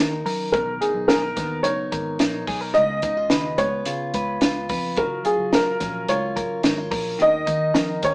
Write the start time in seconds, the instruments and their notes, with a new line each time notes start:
Already playing: picked electric bass D#2, clean electric guitar D#3 C#4 D#4 A#4
0.26 picked electric bass F#2, clean electric guitar A#4, open hi-hat
0.52 picked electric bass B1, clean electric guitar B2, upright piano A#4, kick, closed hi-hat
0.81 clean electric guitar D#4, upright piano G#4, closed hi-hat
0.95 picked electric bass B1
1.08 clean electric guitar G#4, upright piano A#4, snare, closed hi-hat
1.22 clean electric guitar A#4
1.36 picked electric bass D#2, clean electric guitar B3, kick, snare, closed hi-hat
1.63 picked electric bass F#1, clean electric guitar D#4, upright piano C#5, closed hi-hat
1.92 picked electric bass G#1, clean electric guitar A#4, kick, closed hi-hat
2.19 picked electric bass A#1, clean electric guitar D#4, snare, closed hi-hat
2.47 picked electric bass B1, clean electric guitar G#4, kick, open hi-hat
2.61 clean electric guitar A#4
2.74 picked electric bass C#2, clean electric guitar C#3, upright piano D#5, closed hi-hat
3.02 picked electric bass C#2, clean electric guitar D#4, kick, closed hi-hat
3.17 clean electric guitar F4
3.30 picked electric bass D#2, clean electric guitar B4, snare, closed hi-hat
3.58 picked electric bass C#2, clean electric guitar B3, upright piano C#5, kick, closed hi-hat
3.85 picked electric bass C#3, clean electric guitar F4, closed hi-hat
4.14 picked electric bass C#2, clean electric guitar B4, kick, closed hi-hat
4.41 picked electric bass C#2, clean electric guitar F4, snare, closed hi-hat
4.69 picked electric bass F2, clean electric guitar B4, kick, open hi-hat
4.96 picked electric bass F#1, clean electric guitar F#3, upright piano A#4, kick, closed hi-hat
5.25 clean electric guitar F4, upright piano G#4, closed hi-hat
5.38 picked electric bass F#1
5.53 clean electric guitar A#4, upright piano A#4, snare, closed hi-hat
5.80 picked electric bass A#1, clean electric guitar C#4, kick, snare, closed hi-hat
6.09 picked electric bass C#2, clean electric guitar F4, upright piano C#5, closed hi-hat
6.36 picked electric bass F#1, clean electric guitar A#4, kick, closed hi-hat
6.63 picked electric bass G#1, clean electric guitar D#4, snare, closed hi-hat
6.78 clean electric guitar F4
6.91 picked electric bass A#1, clean electric guitar A#4, kick, open hi-hat
7.19 picked electric bass D#2, clean electric guitar D#3, upright piano D#5, closed hi-hat
7.46 picked electric bass D#2, clean electric guitar D#4, kick, closed hi-hat
7.74 picked electric bass F2, clean electric guitar A#4, snare, closed hi-hat
8.03 picked electric bass D#2, clean electric guitar C#4, upright piano C#5, kick, closed hi-hat